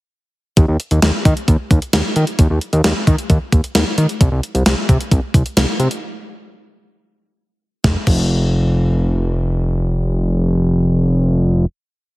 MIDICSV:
0, 0, Header, 1, 3, 480
1, 0, Start_track
1, 0, Tempo, 454545
1, 602, Time_signature, 4, 2, 24, 8
1, 12841, End_track
2, 0, Start_track
2, 0, Title_t, "Analog synth bass"
2, 0, Program_c, 0, 38
2, 601, Note_on_c, 0, 39, 110
2, 693, Note_off_c, 0, 39, 0
2, 722, Note_on_c, 0, 39, 92
2, 813, Note_off_c, 0, 39, 0
2, 963, Note_on_c, 0, 39, 94
2, 1054, Note_off_c, 0, 39, 0
2, 1082, Note_on_c, 0, 39, 97
2, 1174, Note_off_c, 0, 39, 0
2, 1323, Note_on_c, 0, 51, 100
2, 1414, Note_off_c, 0, 51, 0
2, 1562, Note_on_c, 0, 39, 102
2, 1653, Note_off_c, 0, 39, 0
2, 1802, Note_on_c, 0, 39, 96
2, 1894, Note_off_c, 0, 39, 0
2, 2042, Note_on_c, 0, 39, 92
2, 2134, Note_off_c, 0, 39, 0
2, 2283, Note_on_c, 0, 51, 101
2, 2374, Note_off_c, 0, 51, 0
2, 2522, Note_on_c, 0, 39, 111
2, 2613, Note_off_c, 0, 39, 0
2, 2642, Note_on_c, 0, 39, 101
2, 2734, Note_off_c, 0, 39, 0
2, 2882, Note_on_c, 0, 39, 106
2, 2973, Note_off_c, 0, 39, 0
2, 3003, Note_on_c, 0, 39, 105
2, 3094, Note_off_c, 0, 39, 0
2, 3244, Note_on_c, 0, 51, 98
2, 3335, Note_off_c, 0, 51, 0
2, 3481, Note_on_c, 0, 39, 99
2, 3573, Note_off_c, 0, 39, 0
2, 3722, Note_on_c, 0, 39, 90
2, 3813, Note_off_c, 0, 39, 0
2, 3962, Note_on_c, 0, 39, 106
2, 4054, Note_off_c, 0, 39, 0
2, 4201, Note_on_c, 0, 51, 108
2, 4293, Note_off_c, 0, 51, 0
2, 4442, Note_on_c, 0, 36, 109
2, 4534, Note_off_c, 0, 36, 0
2, 4560, Note_on_c, 0, 36, 100
2, 4652, Note_off_c, 0, 36, 0
2, 4800, Note_on_c, 0, 36, 92
2, 4892, Note_off_c, 0, 36, 0
2, 4921, Note_on_c, 0, 36, 98
2, 5013, Note_off_c, 0, 36, 0
2, 5163, Note_on_c, 0, 48, 105
2, 5255, Note_off_c, 0, 48, 0
2, 5401, Note_on_c, 0, 36, 104
2, 5493, Note_off_c, 0, 36, 0
2, 5642, Note_on_c, 0, 36, 100
2, 5734, Note_off_c, 0, 36, 0
2, 5880, Note_on_c, 0, 36, 100
2, 5973, Note_off_c, 0, 36, 0
2, 6119, Note_on_c, 0, 48, 101
2, 6212, Note_off_c, 0, 48, 0
2, 8282, Note_on_c, 0, 29, 99
2, 8416, Note_off_c, 0, 29, 0
2, 8522, Note_on_c, 0, 29, 101
2, 12308, Note_off_c, 0, 29, 0
2, 12841, End_track
3, 0, Start_track
3, 0, Title_t, "Drums"
3, 601, Note_on_c, 9, 36, 108
3, 601, Note_on_c, 9, 42, 79
3, 707, Note_off_c, 9, 36, 0
3, 707, Note_off_c, 9, 42, 0
3, 842, Note_on_c, 9, 42, 65
3, 947, Note_off_c, 9, 42, 0
3, 961, Note_on_c, 9, 42, 51
3, 1067, Note_off_c, 9, 42, 0
3, 1081, Note_on_c, 9, 38, 105
3, 1083, Note_on_c, 9, 42, 69
3, 1187, Note_off_c, 9, 38, 0
3, 1188, Note_off_c, 9, 42, 0
3, 1323, Note_on_c, 9, 42, 68
3, 1324, Note_on_c, 9, 36, 95
3, 1429, Note_off_c, 9, 36, 0
3, 1429, Note_off_c, 9, 42, 0
3, 1445, Note_on_c, 9, 42, 56
3, 1550, Note_off_c, 9, 42, 0
3, 1562, Note_on_c, 9, 36, 91
3, 1564, Note_on_c, 9, 42, 61
3, 1668, Note_off_c, 9, 36, 0
3, 1670, Note_off_c, 9, 42, 0
3, 1802, Note_on_c, 9, 36, 91
3, 1803, Note_on_c, 9, 42, 69
3, 1908, Note_off_c, 9, 36, 0
3, 1909, Note_off_c, 9, 42, 0
3, 1922, Note_on_c, 9, 42, 53
3, 2028, Note_off_c, 9, 42, 0
3, 2040, Note_on_c, 9, 42, 74
3, 2041, Note_on_c, 9, 38, 105
3, 2145, Note_off_c, 9, 42, 0
3, 2146, Note_off_c, 9, 38, 0
3, 2280, Note_on_c, 9, 42, 67
3, 2385, Note_off_c, 9, 42, 0
3, 2399, Note_on_c, 9, 42, 57
3, 2504, Note_off_c, 9, 42, 0
3, 2521, Note_on_c, 9, 42, 80
3, 2522, Note_on_c, 9, 36, 106
3, 2626, Note_off_c, 9, 42, 0
3, 2627, Note_off_c, 9, 36, 0
3, 2761, Note_on_c, 9, 42, 67
3, 2866, Note_off_c, 9, 42, 0
3, 2881, Note_on_c, 9, 42, 51
3, 2987, Note_off_c, 9, 42, 0
3, 3002, Note_on_c, 9, 38, 109
3, 3003, Note_on_c, 9, 42, 69
3, 3107, Note_off_c, 9, 38, 0
3, 3109, Note_off_c, 9, 42, 0
3, 3243, Note_on_c, 9, 42, 70
3, 3244, Note_on_c, 9, 36, 96
3, 3349, Note_off_c, 9, 42, 0
3, 3350, Note_off_c, 9, 36, 0
3, 3363, Note_on_c, 9, 42, 57
3, 3469, Note_off_c, 9, 42, 0
3, 3481, Note_on_c, 9, 36, 94
3, 3483, Note_on_c, 9, 42, 64
3, 3587, Note_off_c, 9, 36, 0
3, 3588, Note_off_c, 9, 42, 0
3, 3722, Note_on_c, 9, 36, 96
3, 3722, Note_on_c, 9, 42, 72
3, 3827, Note_off_c, 9, 36, 0
3, 3828, Note_off_c, 9, 42, 0
3, 3843, Note_on_c, 9, 42, 53
3, 3949, Note_off_c, 9, 42, 0
3, 3959, Note_on_c, 9, 42, 78
3, 3960, Note_on_c, 9, 38, 103
3, 4065, Note_off_c, 9, 42, 0
3, 4066, Note_off_c, 9, 38, 0
3, 4201, Note_on_c, 9, 42, 69
3, 4306, Note_off_c, 9, 42, 0
3, 4321, Note_on_c, 9, 42, 58
3, 4427, Note_off_c, 9, 42, 0
3, 4442, Note_on_c, 9, 36, 107
3, 4443, Note_on_c, 9, 42, 80
3, 4548, Note_off_c, 9, 36, 0
3, 4549, Note_off_c, 9, 42, 0
3, 4682, Note_on_c, 9, 42, 68
3, 4788, Note_off_c, 9, 42, 0
3, 4803, Note_on_c, 9, 42, 52
3, 4909, Note_off_c, 9, 42, 0
3, 4921, Note_on_c, 9, 38, 111
3, 4922, Note_on_c, 9, 42, 72
3, 5027, Note_off_c, 9, 38, 0
3, 5028, Note_off_c, 9, 42, 0
3, 5164, Note_on_c, 9, 36, 96
3, 5164, Note_on_c, 9, 42, 72
3, 5269, Note_off_c, 9, 36, 0
3, 5270, Note_off_c, 9, 42, 0
3, 5286, Note_on_c, 9, 42, 58
3, 5391, Note_off_c, 9, 42, 0
3, 5401, Note_on_c, 9, 36, 95
3, 5404, Note_on_c, 9, 42, 63
3, 5507, Note_off_c, 9, 36, 0
3, 5510, Note_off_c, 9, 42, 0
3, 5641, Note_on_c, 9, 36, 94
3, 5644, Note_on_c, 9, 42, 73
3, 5747, Note_off_c, 9, 36, 0
3, 5749, Note_off_c, 9, 42, 0
3, 5763, Note_on_c, 9, 42, 52
3, 5868, Note_off_c, 9, 42, 0
3, 5880, Note_on_c, 9, 42, 75
3, 5882, Note_on_c, 9, 38, 106
3, 5986, Note_off_c, 9, 42, 0
3, 5987, Note_off_c, 9, 38, 0
3, 6121, Note_on_c, 9, 42, 71
3, 6227, Note_off_c, 9, 42, 0
3, 6241, Note_on_c, 9, 42, 58
3, 6346, Note_off_c, 9, 42, 0
3, 8282, Note_on_c, 9, 36, 105
3, 8282, Note_on_c, 9, 38, 84
3, 8388, Note_off_c, 9, 36, 0
3, 8388, Note_off_c, 9, 38, 0
3, 8521, Note_on_c, 9, 49, 83
3, 8522, Note_on_c, 9, 36, 105
3, 8626, Note_off_c, 9, 49, 0
3, 8627, Note_off_c, 9, 36, 0
3, 12841, End_track
0, 0, End_of_file